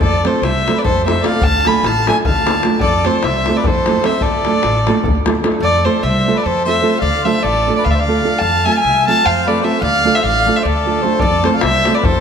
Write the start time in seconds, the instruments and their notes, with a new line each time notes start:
0.01 upright bass F2, harmonica A4, violin D5, davul low
0.23 nylon-string guitar A3 C4 F4 A4, harmonica A4, violin C5, davul high
0.34 davul high
0.42 upright bass C2, harmonica C5, violin E5, davul high
0.57 davul high
0.67 nylon-string guitar A3 C4 F4 A4, davul high
0.75 harmonica B4, violin D5
0.84 upright bass F2, harmonica A4, violin C5, davul low
0.97 davul high
1.04 nylon-string guitar A3 C4 F4 A4, harmonica C5, violin E5
1.08 davul high
1.17 davul high
1.22 nylon-string guitar A3 C4 F4 A4, harmonica D5, violin F5, davul high
1.33 davul high
1.41 upright bass D2, harmonica F5, violin A5, davul low
1.65 nylon-string guitar A3 D4 F4 A4, harmonica G#5, violin B5, davul high
1.75 davul high
1.83 upright bass A1, harmonica F5, violin A5, davul high
1.96 davul high
2.07 nylon-string guitar A3 D4 F4 A4, harmonica E5, violin G#5, davul high
2.25 upright bass D2, harmonica F5, violin A5, davul low
2.38 davul high
2.46 nylon-string guitar A3 D4 F4 A4, davul high
2.55 davul high
2.63 nylon-string guitar A3 D4 F4 A4, davul high
2.73 davul high
2.80 upright bass F2, harmonica A4, violin D5, davul low
3.05 nylon-string guitar A3 C4 F4 A4, harmonica A4, violin C5, davul high
3.13 davul high
3.23 upright bass C2, harmonica C5, violin E5, davul high
3.34 davul high
3.46 nylon-string guitar A3 C4 F4 A4, davul high
3.57 harmonica B4, violin D5
3.64 upright bass F2, harmonica A4, violin C5, davul low
3.75 davul high
3.86 nylon-string guitar A3 C4 F4 A4, davul high
3.95 davul high
4.04 nylon-string guitar A3 C4 F4 A4, harmonica C5, violin E5, davul high
4.13 davul high
4.21 upright bass D2, harmonica A4, violin D5, davul low
4.34 davul high
4.45 nylon-string guitar A3 D4 F4 A4, davul high
4.54 davul high
4.63 upright bass A1, davul high
4.75 davul high
4.87 nylon-string guitar A3 D4 F4 A4, davul high
4.95 davul high
5.04 upright bass D2, davul low
5.15 davul high
5.26 nylon-string guitar A3 D4 F4 A4, davul high
5.35 davul high
5.44 nylon-string guitar A3 D4 F4 A4, davul high
5.52 davul high
5.60 upright bass F2, harmonica A4, violin D5
5.84 nylon-string guitar A3 C4 F4 A4, harmonica A4, violin C5
6.01 upright bass C2, harmonica C5, violin E5
6.27 nylon-string guitar A3 C4 F4 A4
6.35 harmonica B4, violin D5
6.43 upright bass F2, harmonica A4, violin C5
6.64 nylon-string guitar A3 C4 F4, harmonica C5, violin E5
6.69 nylon-string guitar A4
6.82 nylon-string guitar A3 C4 F4 A4
7.00 upright bass D2, harmonica D5, violin F5
7.24 nylon-string guitar A3 D4 F4 A4, harmonica C5, violin E5
7.42 upright bass A1, harmonica A4, violin D5
7.67 nylon-string guitar A3 D4 F4 A4
7.76 harmonica B4, violin D5
7.84 upright bass D2, violin F5
7.90 harmonica D5, violin E5
7.95 harmonica C5
7.99 harmonica D5, violin F5
8.08 nylon-string guitar A3 D4 F4 A4
8.24 nylon-string guitar A3 D4 F4 A4
8.38 upright bass F2, harmonica F5, violin A5
8.65 nylon-string guitar A3 C4 F4 A4, harmonica E5, violin G#5
8.71 harmonica F5, violin A5
8.76 violin G#5
8.81 upright bass C2, harmonica E5
9.07 nylon-string guitar A3 C4 F4 A4, harmonica F5, violin A5
9.25 upright bass F2, harmonica C5, violin F5
9.47 nylon-string guitar A3 C4 F4 A4, harmonica B4, violin D5
9.62 nylon-string guitar A3 C4 F4 A4, harmonica C5, violin E5
9.82 upright bass D2, harmonica D5, violin F5
10.04 nylon-string guitar A3 D4 F4 A4
10.15 harmonica C5, violin E5
10.23 upright bass A1, harmonica D5, violin F5
10.46 nylon-string guitar A3 D4 F4 A4
10.56 harmonica C5, violin E5
10.63 upright bass D2, violin D5
10.67 harmonica A4
10.85 nylon-string guitar A3 D4 F4 A4
11.02 nylon-string guitar A3 D4 F4 A4, harmonica A4, violin C5
11.20 upright bass F2, harmonica A4, violin D5, davul low
11.44 nylon-string guitar A3 C4 F4 A4, harmonica A4, violin C5, davul high
11.53 harmonica D5, violin F5, davul high
11.61 upright bass C2, harmonica C5, violin E5, davul high
11.74 davul high
11.85 nylon-string guitar A3 C4 F4 A4, davul high
11.94 harmonica B4, violin D5
12.03 upright bass F2, harmonica A4, violin C5, davul low
12.15 davul high